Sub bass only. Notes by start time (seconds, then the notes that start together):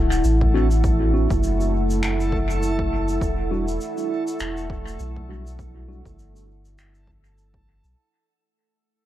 Already playing: D1
0.24 A1
1.30 F#1
3.21 E1
4.40 E1
5.00 B1
6.06 G1
7.84 B1